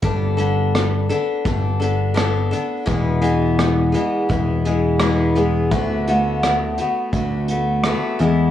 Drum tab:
HH |xxxxxxxx|xxxxxxxx|xxxxxxxx|
SD |--r---r-|--r---r-|--r---r-|
BD |o---o---|o---o---|o---o---|